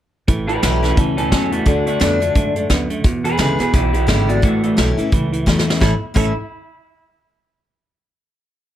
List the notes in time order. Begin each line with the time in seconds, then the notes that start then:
0.28 A1 A2 E3, kick, closed hi-hat
0.48 A2 E3 G4 B4, closed hi-hat
0.62 B1 A2 E3 F#3 A3 C#4 E4 G4 B4, snare, closed hi-hat
0.83 A2 E3 C#4 E4 G4 B4, snare, closed hi-hat
0.97 C#2 A2 B2 E3 C#4 A4, kick, closed hi-hat
1.17 A2 E3 C#4 A4, closed hi-hat
1.31 E2 A2 C#3 F#3 C#4 A4, kick, snare, closed hi-hat
1.52 A2 E3 A3 F#4, closed hi-hat
1.66 D2 D3 A3 D4 F#4, kick, closed hi-hat
1.86 D3 A3 D4 F#4, closed hi-hat
2.00 F2 D3 A3 B3 D4 F#4, snare, closed hi-hat
2.20 D3 A3 D4 F#4, closed hi-hat
2.35 F#2 G#2 D3 A3, kick, closed hi-hat
2.56 D3 A3, closed hi-hat
2.70 D2 F#2 D3 B3, kick, snare, closed hi-hat
2.90 D3 A3, closed hi-hat
3.04 E2 B2, kick, snare, closed hi-hat
3.24 E2 B2 G#4 B4, closed hi-hat
3.38 C#2 E2 C#3 D3 G#3 B3 E4 G#4 B4, snare, closed hi-hat
3.59 E2 B2 B3 E4 G#4 B4, muted upright bass stroke, snare, closed hi-hat
3.74 B1 E2 B2 E4 G4, kick, snare, closed hi-hat
3.93 E2 B2 E4 G4, closed hi-hat
4.07 G#1 E2 C#3 D3 G#3 B3 E4 G4, kick, snare, closed hi-hat
4.28 E2 B2 D4 F#4, closed hi-hat
4.42 A1 A2 E3 A3 F#4, kick, closed hi-hat
4.63 A2 E3 A3 F#4, closed hi-hat
4.77 B1 A2 E3 F#3 A3 C#4 E4, snare, closed hi-hat
4.97 A2 E3 C#4 E4, muted upright bass stroke, closed hi-hat
5.12 C#2 E2 A2 E3, kick, closed hi-hat
5.32 A2 E3, closed hi-hat
5.46 E2 A2 E3 F#3 A3 C#4 E4, kick, snare
5.59 snare
5.67 A2 E3 C#4 E4, snare
5.80 A1 A2 E3 A3 C#4 E4 A4, kick, snare
6.14 A1 A2 E3 A3 C#4 E4 A4, kick, crash